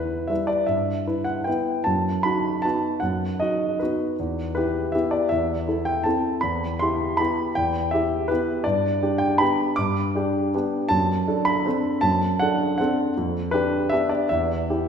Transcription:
Already playing: E2 E4 B4
0.27 G3 E4 B4 E5
0.47 D5
0.66 G2 E5
1.07 E4 B4
1.24 F#5
1.44 B3 E4 B4 G5
1.84 F#2 A5
2.23 D#4 F#4 B5
2.62 B3 D#4 F#4 A5
3.00 F#2 F#5
3.40 D#4 F#4 D#5
3.79 B3 D#4 F#4 B4
4.19 E2
4.55 E4 G4 B4
4.92 B3 E4 G4 E5
5.11 D5
5.29 E2 E5
5.68 E4 A4
5.85 G5
6.04 C4 E4 A4 A5
6.41 E2 B5
6.79 E4 G4 C6
7.17 B3 E4 G4 B5
7.55 E2 G5
7.91 E4 G4 E5
8.28 B3 E4 G4 B4
8.64 G2 D5
9.02 D4 G4
9.18 G5
9.38 B3 D4 G4 B5
9.76 G2 D6
10.15 D4 G4
10.55 B3 D4 G4
10.89 F#2 A5
11.27 D4 A4
11.45 B5
11.66 C4 D4 A4
12.01 F#2 A5
12.39 D4 A4 F#5
12.78 C4 D4 A4 F#5
13.17 F2
13.51 D4 G4 B4
13.89 B3 D4 G4 E5
14.09 D5
14.29 E2 E5
14.70 E4 G4

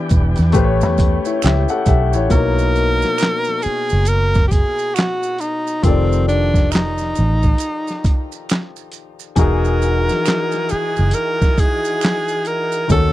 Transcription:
Already playing: E3 B3 D4 E4 G4 D5
0.09 E1, kick, closed hi-hat, maracas
0.36 E2, closed hi-hat, maracas
0.41 snare
0.52 A1 A3 C#4 G4 B4, kick, closed hi-hat, maracas
0.58 C5
0.64 C#5
0.81 E2, snare, maracas
0.98 kick, closed hi-hat, maracas
1.25 E4 C#5, maracas
1.42 C#2 G4 E5, finger snap, snare, closed hi-hat, maracas
1.47 clap
1.69 A4 F#5, maracas
1.86 B1 G4 E5, kick, closed hi-hat, maracas
2.13 A1 E4 C#5, maracas
2.29 B1 B2 A#3 D#4 A#4, kick, closed hi-hat, maracas
2.34 C#5
2.59 maracas
2.76 closed hi-hat, maracas
3.02 snare, maracas
3.18 finger snap, closed hi-hat, maracas
3.23 snare, clap
3.45 maracas
3.49 snare
3.62 G#4, muted fingered electric bass stroke, closed hi-hat, maracas
3.89 F#1, maracas
4.05 A#4, closed hi-hat, maracas
4.35 kick, snare, maracas
4.48 G4 G#4, kick, maracas
4.53 closed hi-hat
4.79 maracas
4.95 F#4, finger snap, snare, closed hi-hat, maracas
5.00 clap
5.23 maracas
5.38 D#4, closed hi-hat, maracas
5.67 maracas
5.83 F1 D#3 F3 C4 G4, kick, closed hi-hat, maracas
5.87 A4 D5
6.13 maracas
6.28 D4, closed hi-hat, maracas
6.54 kick, snare, maracas
6.72 D#4, finger snap, snare, closed hi-hat, maracas
6.76 clap
6.98 snare, maracas
7.15 A1, closed hi-hat, maracas
7.43 kick, maracas
7.58 closed hi-hat, maracas
7.88 snare, maracas
8.04 kick, closed hi-hat, maracas
8.32 maracas
8.49 finger snap, snare, clap, closed hi-hat, maracas
8.76 maracas
8.92 closed hi-hat, maracas
9.19 maracas
9.35 E1 E3 D#4 F#4 G#4 A#4, kick, closed hi-hat, maracas
9.41 G#4
9.65 maracas
9.82 closed hi-hat, maracas
10.09 snare, maracas
10.26 finger snap, snare, clap, closed hi-hat, maracas
10.52 snare, maracas
10.69 G#4, muted fingered electric bass stroke, closed hi-hat, maracas
10.97 F#1, maracas
11.11 A#4, closed hi-hat, maracas
11.42 kick, snare, maracas
11.58 G#4, kick, closed hi-hat, maracas
11.85 maracas
12.01 finger snap, snare, closed hi-hat, maracas
12.06 clap
12.28 maracas
12.45 A#4, closed hi-hat, maracas
12.72 maracas
12.88 D#2 D#3 A3 C#4 F#4 A4, kick, closed hi-hat, maracas
12.93 A4

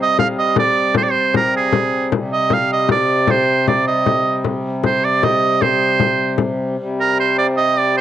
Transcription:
Already playing: C3 G3
0.02 D#5
0.19 F5, frame drum
0.39 D#5
0.56 D5, frame drum
0.95 C5, frame drum
1.03 D5
1.11 C5, frame drum
1.34 A#4, frame drum
1.56 G#4
1.72 frame drum
2.12 C3 G3, frame drum
2.33 D#5
2.50 F5, frame drum
2.73 D#5
2.89 D5, frame drum
3.27 C5, frame drum
3.67 D5, frame drum
3.88 D#5
4.06 frame drum
4.44 frame drum
4.83 C5, frame drum
5.05 D5
5.23 D#5, frame drum
5.62 C5, frame drum
6.00 frame drum
6.38 frame drum
6.58 frame drum
6.77 C3 G3
7.00 A#4
7.20 C5
7.38 D5
7.57 D#5
7.78 D5
7.97 C5

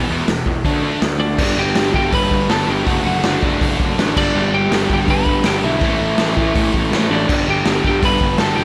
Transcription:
0.10 E2 B2 E3
0.28 E1 E2 B2, snare, open hi-hat
0.46 E2 B2, kick
0.64 D2 D3 A3 D4, kick, open hi-hat
0.83 D3 A3 D4
1.00 D2 D3 A3, snare, open hi-hat
1.19 D3 A3 D4 D5
1.37 G1 G2 D3 G3 B3 D4 G4 B4, kick, crash
1.57 G1 G4 G5
1.75 G1 G2 D3 G3, snare, open hi-hat
1.93 G1 G2 D3 G3 G4 G5, kick
2.12 G1 G2 D3 G3 B4 B5, kick, open hi-hat
2.31 G1, kick
2.50 G1 G2 D3 G3 A4 A5, snare, open hi-hat
2.65 G1 G2 D3 G3 B3 D4 G4 B4
2.69 G3 G5
2.84 F#1 D3 F#3 A3 D4 F#4 A4 F#5, kick, open hi-hat
3.05 F#1 F#4 F#5
3.23 F#1 D3 A3 D4, snare, open hi-hat
3.42 F#1 D3 A3 D4, kick
3.61 F#1 D3 A3 D4, kick, open hi-hat
3.80 F#1, kick
3.97 A1 D3 A3 D4, snare, open hi-hat
4.15 G1 G2 D3 G3 B3 D4 G4 D5, kick, crash
4.33 G1 G2 D3 G3
4.52 G1 G4 G5
4.70 G1 G2 D3 G3, snare, open hi-hat
4.89 G1 G2 D3 G3, kick
4.94 G4 G5
5.08 G1 G2 D3 G3 B4 B5, kick, open hi-hat
5.26 G1, kick
5.43 G1 G2 D3 G3 B3 D4 G4 G5, snare, open hi-hat
5.47 G4
5.63 B1 G2 D3 G3 E4 E5
5.80 A1 A2 E3 A3 C#4 E4 A4, kick, open hi-hat
5.84 A3
6.00 A1
6.18 A1 A2 E3 A3, snare, open hi-hat
6.37 A1 A2 E3 A3, kick
6.55 A1 A2 E3 A3, kick, open hi-hat
6.74 A1, kick
6.92 A1 A2 E3 A3, snare, open hi-hat
7.08 A1 A2 E3 A3 C#4 D4 E4 A4
7.12 A3 D5
7.26 G1 G2 D3 G3 B3 D4 G4, kick, crash
7.46 G1 G4 G5
7.65 G1 G2 D3 G3, snare, open hi-hat
7.84 G1 G2 D3 G3 G4 G5, kick
8.03 G1 G2 D3 G3 B4 B5, kick, open hi-hat
8.21 G1, kick
8.38 G1 G2 D3 G3 A4 A5, snare, open hi-hat
8.55 F1 G2 D3 G3 B3 D4 G4 G5

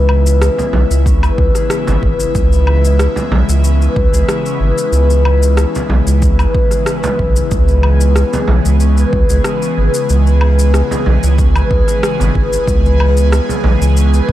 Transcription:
Already playing: C#2 C#3 E3 G#3 B3 C#4 E4 G#4 B4
0.09 low woodblock
0.26 shaker
0.42 cross-stick, shaker
0.58 G#4, frame drum, shaker
0.73 B1, frame drum
0.91 C#2 E4, shaker
1.06 C#4, kick, shaker
1.23 B3, low woodblock, shaker
1.38 C#2, kick
1.55 G#4, cross-stick, shaker
1.70 E4, cross-stick, shaker
1.87 G#1 C#4, frame drum, shaker
2.02 G#1 B4, kick
2.20 shaker
2.34 C#2 B3, kick, shaker
2.52 shaker
2.66 B3, low woodblock
2.85 shaker
2.99 cross-stick, shaker
3.16 G#4, frame drum, shaker
3.32 B1, frame drum
3.48 C#2 E4, shaker
3.63 C#4, shaker
3.80 B3, shaker
3.96 C#2, kick
4.12 C#2 G#4, shaker
4.28 E4, cross-stick, shaker
4.45 C#4, shaker
4.60 G#1 B4
4.78 shaker
4.92 C#2 B3, shaker
5.10 shaker
5.25 low woodblock
5.43 shaker
5.57 cross-stick, shaker
5.74 G#4, frame drum, shaker
5.90 B1, frame drum
6.06 C#2 E4, shaker
6.21 C#4, kick, shaker
6.39 B3, low woodblock, shaker
6.55 kick
6.71 G#4, cross-stick, shaker
6.86 B4, cross-stick, shaker
7.03 G#4, frame drum, shaker
7.19 B1 E4, kick
7.36 shaker
7.51 C#2 B3 G#4, kick, shaker
7.68 shaker
7.83 B3, low woodblock
8.01 shaker
8.16 cross-stick, shaker
8.33 G#4, frame drum, shaker
8.48 B1, frame drum
8.65 C#2 E4, shaker
8.80 C#4, shaker
8.97 B3, shaker
9.13 C#2, kick
9.29 C#2 G#4, shaker
9.44 E4, cross-stick, shaker
9.62 C#4, shaker
9.78 G#1 B4
9.94 shaker
10.09 C#2, shaker
10.27 shaker
10.41 B3, low woodblock
10.59 shaker
10.74 cross-stick, shaker
10.91 G#4, frame drum, shaker
11.06 B1, frame drum
11.23 C#2 E4, shaker
11.38 C#4, kick, shaker
11.56 B3, low woodblock, shaker
11.71 C#2, kick
11.88 G#4, cross-stick, shaker
12.03 E4, cross-stick, shaker
12.20 G#1 C#4, frame drum, shaker
12.35 G#1 B4, kick
12.53 shaker
12.67 C#2 B3, kick, shaker
12.86 shaker
12.99 B3, low woodblock
13.17 shaker
13.32 cross-stick, shaker
13.49 G#4, frame drum, shaker
13.64 B1, frame drum
13.81 C#2 E4, shaker
13.97 C#4, shaker
14.13 B3, shaker
14.29 C#2, kick

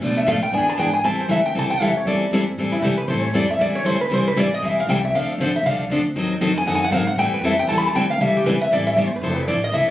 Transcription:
0.01 B2 F3 A3 D4 A4
0.17 E5
0.26 A2 B2 F3 A3 D4 A4 F5
0.43 G5
0.52 E2 E3 B3 D4 G#4 G#5
0.69 A5
0.78 G#2 E3 B3 D4 G#4 G5
0.93 G#5
1.03 E2 E3 G3 C4 E4 A4 A5
1.21 C5
1.28 D2 E3 G3 C4 E4 A4 E5
1.46 G5
1.55 C2 E3 G3 C4 E4 A4
1.59 A5
1.70 G5
1.80 D2 E3 G3 C4 E4 A4 E5
1.95 C#5, muted upright bass stroke
2.05 E2 E3 G3 C4 E4 A4 D5
2.31 G2 E3 G3 C4 E4 A4
2.58 A2 E3 G3 C4 E4 A4
2.72 E4, muted upright bass stroke
2.82 C3 E3 G3 C4 E4 G4 A4
2.97 B4
3.08 A2 E3 G3 C4 E4 A4 C5
3.22 C#5
3.33 F2 E3 G3 C4 E4 A4 D5
3.50 E5
3.59 E2 E3 G3 C4 E4 A4 D5
3.75 C#5
3.84 D2 E3 G3 C4 E4 A4 C5
4.01 B4
4.10 C2 E3 G3 C4 E4 A4 C5
4.28 B4
4.36 A1 E3 G3 C4 E4 A4 D5
4.54 D#5
4.62 B1 E3 G3 C4 E4 A4 E5
4.80 F5
4.87 C2 E3 G3 C4 E4 A4 G5
5.05 E5
5.13 D2 D3 F3 C4 D4 A4 F5
5.30 A4
5.38 A1 D3 F3 C4 D4 A4 C5
5.56 E5
5.63 C2 D3 F3 C4 D4 A4 F5
5.90 D2 D3 F3 C4 D4 A4
6.15 D#2 D#3 F#3 C4 D#4 A4
6.41 F2 D#3 F#3 C4 D#4 A4
6.58 G#5
6.66 F#2 D#3 F#3 C4 D#4 A4 F#5
6.75 G#5
6.84 F#5
6.91 G#2 D#3 F#3 C4 D#4 A4 F5
7.07 F#5
7.16 A2 E3 G3 C4 E4 A4 G5
7.31 B4, muted upright bass stroke
7.41 F2 E3 G3 C4 E4 A4
7.45 E5
7.59 G5
7.67 E2 E3 G3 C4 E4 A4 A5
7.78 B5
7.87 A5
7.93 D2 E3 G3 C4 E4 A4 G5
8.10 F5
8.18 C2 E3 G3 C4 E4 A4 E5
8.37 G4
8.44 B1 E3 G3 C4 E4 A4 B4
8.60 E5, muted upright bass stroke
8.71 A1 E3 G3 C4 E4 A4 D5
8.87 E5
8.96 G1 E3 G3 C4 E4 A4 D5
9.08 C5
9.16 B4
9.21 F1 F3 C4 E4 A4 C5
9.36 B4
9.48 A1 F3 C4 E4 A4 D5
9.64 D#5
9.72 C2 F3 C4 E4 A4 E5

